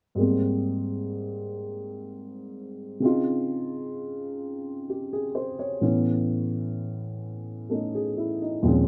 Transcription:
0.15 3.01 G#2 soft
0.15 3.01 G3 soft
0.15 3.02 A#3 soft
0.20 3.00 C4 soft
3.00 5.80 C#3 soft
3.00 5.81 C4 soft
3.00 5.82 D#4 soft
3.06 5.83 F4 medium
4.90 5.25 G4 soft
5.13 5.55 G#4 soft
5.35 5.71 C5 soft
5.59 5.94 C#5 soft
5.81 8.64 A2 soft
5.81 8.65 E3 soft
5.81 8.65 B3 soft
5.81 7.70 C#4 soft
7.69 8.64 A3 soft
7.69 8.65 C#4 soft
7.69 8.40 D#4 soft
7.69 8.07 A4 soft
7.95 8.38 G#4 soft
8.17 8.54 E4 soft
8.42 8.78 D#4 soft
8.63 8.88 D#2 soft
8.63 8.88 A#2 soft
8.63 8.88 F3 soft
8.63 8.88 G#3 soft
8.63 8.88 C4 soft
8.67 8.88 C#4 soft

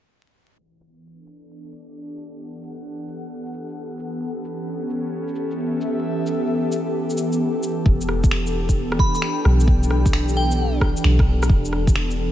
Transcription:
0.58 12.32 E3 medium
0.81 12.32 B3 medium
0.81 shaker soft
1.03 4.49 D4 medium
1.12 12.32 A4 medium
1.26 shaker medium
1.64 shaker soft
1.72 shaker medium
1.80 12.32 G4 medium
1.88 shaker soft
2.17 shaker medium
2.27 5.57 F#5 medium
2.63 shaker soft
3.08 shaker medium
3.46 shaker soft
3.53 shaker medium
3.69 shaker soft
3.99 shaker medium
4.37 7.85 C#4 medium
4.45 shaker medium
4.90 shaker medium
5.28 shaker soft
5.35 shaker medium
5.45 7.86 E5 medium
5.51 shaker soft
5.81 shaker soft
6.26 shaker soft
6.72 shaker soft
7.10 shaker soft
7.17 shaker medium
7.32 shaker soft
7.63 shaker medium
7.86 8.98 E1 medium
7.86 kick loud
8.01 shaker soft
8.09 cross-stick soft
8.24 kick loud
8.24 shaker medium
8.31 12.32 D4 medium
8.31 finger snap loud
8.47 shaker soft
8.59 12.32 G5 medium
8.69 kick medium
8.69 shaker medium
8.92 cross-stick medium
8.99 9.12 B5 medium
8.99 kick loud
9.15 9.38 B5 medium
9.15 shaker medium
9.22 finger snap medium
9.45 10.95 B1 medium
9.45 cross-stick medium
9.60 shaker medium
9.68 kick loud
9.83 shaker soft
9.90 cross-stick soft
10.06 kick loud
10.06 shaker medium
10.13 finger snap loud
10.29 shaker soft
10.37 10.74 G5 medium
10.51 shaker medium
10.81 kick medium
10.81 cross-stick medium
10.97 shaker medium
11.04 11.49 B1 medium
11.04 finger snap loud
11.19 kick loud
11.19 cross-stick soft
11.43 cross-stick medium
11.43 shaker medium
11.49 12.32 E1 loud
11.49 kick loud
11.65 shaker soft
11.73 cross-stick soft
11.87 kick loud
11.87 shaker medium
11.96 finger snap loud
12.11 shaker soft
12.19 12.32 E5 medium

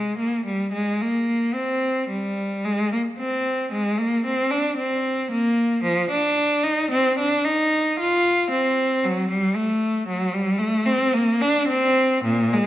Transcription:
0.00 0.19 G#3 medium
0.18 0.45 A#3 medium
0.46 0.73 G3 medium
0.73 1.00 G#3 medium
1.02 1.55 A#3 medium
1.54 2.09 C4 medium
2.09 2.63 G3 medium
2.65 2.91 G#3 medium
2.92 3.00 A#3 medium
3.19 3.70 C4 medium
3.72 3.98 G#3 medium
4.00 4.25 A#3 medium
4.26 4.51 C4 medium
4.51 4.77 D4 medium
4.77 5.29 C4 medium
5.31 5.83 A#3 medium
5.83 6.09 F3 medium
6.11 6.63 D4 medium
6.64 6.90 D#4 medium
6.91 7.16 C4 medium
7.19 7.44 D4 medium
7.45 7.97 D#4 medium
8.00 8.50 F4 medium
8.51 9.02 C4 medium
9.04 9.30 F#3 medium
9.29 9.55 G3 medium
9.56 10.08 A3 medium
10.08 10.34 F#3 medium
10.34 10.60 G3 medium
10.59 10.86 A3 medium
10.86 11.13 C4 medium
11.14 11.41 A#3 medium
11.42 11.69 D4 medium
11.68 12.24 C4 medium
12.24 12.52 A#2 medium
12.53 12.67 G#3 medium

